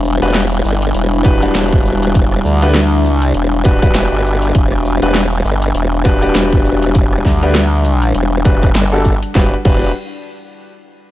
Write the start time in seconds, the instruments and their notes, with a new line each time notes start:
Already playing: wobble bass E1, ambient pad G3 D4 E4
0.04 shaker
0.22 wobble bass E1, grand piano D4 F#4 G4 B4, cross-stick, closed hi-hat, shaker
0.34 snare, closed hi-hat, shaker
0.51 shaker
0.65 wobble bass G1, shaker
0.82 closed hi-hat, shaker
0.94 wobble bass E1, closed hi-hat, shaker
1.14 shaker
1.24 grand piano D4 F#4 G4 B4, kick, cross-stick, closed hi-hat, shaker
1.36 wobble bass D#1
1.42 grand piano D4 F#4 G4 B4, closed hi-hat, shaker
1.55 wobble bass E1, snare, closed hi-hat, shaker
1.73 kick, shaker
1.85 shaker
2.03 closed hi-hat, shaker
2.15 kick, closed hi-hat, shaker
2.32 cross-stick, shaker
2.45 wobble bass D2, shaker
2.62 grand piano D4 F#4 G4 B4, cross-stick, closed hi-hat, shaker
2.74 snare, closed hi-hat, shaker
2.94 shaker
3.05 wobble bass C#2, shaker
3.22 closed hi-hat, shaker
3.34 wobble bass E1, closed hi-hat, shaker
3.53 shaker
3.65 grand piano D4 F#4 G4 B4, kick, closed hi-hat, shaker
3.82 grand piano D4 F#4 G4 B4, kick, closed hi-hat, shaker
3.95 wobble bass E1, snare, closed hi-hat, shaker
4.12 wobble bass G1, shaker
4.26 shaker
4.42 closed hi-hat, shaker
4.55 wobble bass E1, kick, closed hi-hat, shaker
4.72 cross-stick, shaker
4.85 shaker
5.02 wobble bass E1, grand piano D4 F#4 G4 B4, cross-stick, closed hi-hat, shaker
5.15 snare, closed hi-hat, shaker
5.33 shaker
5.45 wobble bass G1, shaker
5.62 closed hi-hat, shaker
5.75 wobble bass E1, closed hi-hat, shaker
5.94 shaker
6.05 grand piano D4 F#4 G4 B4, kick, cross-stick, closed hi-hat, shaker
6.16 wobble bass D#1
6.22 grand piano D4 F#4 G4 B4, closed hi-hat, shaker
6.35 wobble bass E1, snare, closed hi-hat, shaker
6.53 kick, shaker
6.65 shaker
6.83 closed hi-hat, shaker
6.95 kick, closed hi-hat, shaker
7.13 cross-stick, shaker
7.25 wobble bass D2, kick, snare, shaker
7.42 grand piano D4 F#4 G4 B4, closed hi-hat, shaker
7.55 snare, closed hi-hat, shaker
7.73 shaker
7.85 closed hi-hat, shaker
8.02 closed hi-hat, shaker
8.15 wobble bass E1, closed hi-hat, shaker
8.32 shaker
8.45 grand piano D4 F#4 G4 B4, kick, closed hi-hat, shaker
8.63 kick, closed hi-hat, shaker
8.75 wobble bass G1, snare, closed hi-hat, shaker
8.92 grand piano D4 F#4 G4 A4, shaker
9.05 kick, closed hi-hat, shaker
9.23 closed hi-hat, shaker
9.35 wobble bass E1, grand piano D4 F#4 G4 B4, kick, snare
9.65 wobble bass E1, grand piano D4 F#4 G4 B4, kick, crash